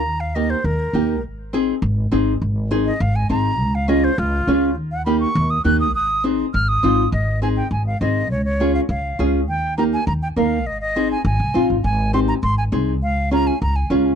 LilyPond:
<<
  \new Staff \with { instrumentName = "Flute" } { \time 4/4 \key aes \major \tempo 4 = 204 bes''8 f''8 ees''8 c''8 bes'2 | r1 | r4. ees''8 f''8 aes''8 bes''4~ | bes''8 f''8 ees''8 c''8 f'2 |
r8 ges''8 ces'''8 des'''4 ees'''8 ges'''8 ees'''8 | ees'''4 r4 f'''8 ees'''4. | ees''4 aes''8 g''8 aes''8 f''8 ees''4 | des''8 des''4 f''8 f''4. r8 |
g''4 bes''8 aes''8 bes''8 g''8 f''4 | ees''8 ees''4 aes''8 aes''4. r8 | aes''4 c'''8 bes''8 c'''8 aes''8 r4 | f''4 bes''8 aes''8 bes''8 aes''8 r4 | }
  \new Staff \with { instrumentName = "Nylon-string guitar" } { \time 4/4 \key aes \major r4 <bes ees' g'>8 r4. <bes ees' g'>8 r8 | r4 <c' ees' aes'>8 r4. <c' ees' aes'>8 r8 | r4 <c' ees' aes'>8 r4. <c' ees' aes'>8 r8 | r4 <des' f' aes'>8 r4. <des' f' aes'>8 r8 |
r4 <bes ees' g'>8 r4. <bes ees' g'>8 r8 | r4 <c' ees' aes'>8 r4. <c' ees' f'>8 r8 | r4 <c' ees' aes'>8 r4. <c' ees' aes'>8 r8 | r4 <des' f' aes'>8 r4. <des' f' aes'>8 r8 |
r4 <bes ees' g'>8 r4. <bes ees' bes'>8 r8 | r4 <c' ees' aes'>8 r4. <c' ees' f'>8 r8 | r4 <c' ees' g'>8 r4. <c' ees' aes'>8 r8 | r4 <des' f' aes'>8 r4. <des' f' aes'>8 r8 | }
  \new Staff \with { instrumentName = "Upright bass" } { \clef bass \time 4/4 \key aes \major ees,2 ees,4 ees,4 | aes,,2 aes,,4 aes,,4 | aes,,2 aes,,4 aes,,4 | des,2 des,4 des,4 |
ees,2 ees,4 ees,4 | aes,,2 aes,,4 aes,,4 | aes,,2 aes,,4 aes,,4 | des,2 des,4 des,4 |
ees,2 ees,4 ees,4 | aes,,2 aes,,8 c,8 bes,,8 aes,,8 | aes,,2 aes,,4 c,4 | des,2 des,4 des,4 | }
>>